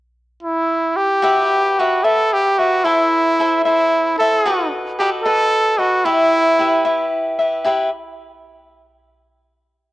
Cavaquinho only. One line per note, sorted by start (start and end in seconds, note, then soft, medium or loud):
1.22 1.77 F#4 medium
1.22 1.78 G4 medium
1.22 1.78 B4 medium
1.22 1.80 E5 medium
1.79 2.04 F#4 soft
1.79 2.04 G4 medium
1.79 2.03 B4 medium
1.79 2.03 E5 medium
2.04 2.60 F#4 soft
2.04 2.59 G4 soft
2.04 2.58 B4 soft
2.04 2.57 E5 medium
2.59 2.85 G4 soft
2.59 2.85 B4 soft
2.59 2.84 E5 soft
2.84 3.38 E4 medium
2.84 3.39 A4 medium
2.84 3.39 C5 medium
2.84 3.40 E5 medium
3.40 3.65 E4 soft
3.40 3.65 A4 medium
3.40 3.65 C5 medium
3.40 3.64 E5 medium
3.65 4.20 E4 soft
3.65 4.20 A4 soft
3.65 4.20 C5 medium
3.65 4.19 E5 medium
4.20 4.45 A4 soft
4.20 4.46 C5 soft
4.20 4.45 E5 soft
4.46 4.99 F#4 medium
4.46 4.99 A4 medium
4.46 5.00 B4 medium
4.46 5.00 D#5 medium
5.00 5.25 F#4 medium
5.00 5.25 A4 medium
5.00 5.25 B4 medium
5.00 5.24 D#5 medium
5.25 5.80 F#4 soft
5.25 5.79 A4 medium
5.25 5.79 B4 medium
5.25 5.77 D#5 medium
5.78 6.05 A4 soft
5.78 6.04 B4 soft
5.78 6.04 D#5 soft
6.05 6.59 E4 medium
6.05 6.59 G4 medium
6.05 6.60 B4 medium
6.05 6.60 E5 medium
6.59 6.85 E4 medium
6.59 6.84 G4 medium
6.59 6.84 B4 medium
6.59 6.84 E5 medium
6.85 7.64 E4 soft
6.85 7.40 G4 soft
6.85 7.40 B4 medium
6.85 7.38 E5 medium
7.39 7.64 G4 soft
7.39 7.65 B4 soft
7.39 7.65 E5 soft
7.64 7.88 E4 medium
7.64 7.89 G4 medium
7.64 7.89 B4 medium
7.64 7.89 E5 medium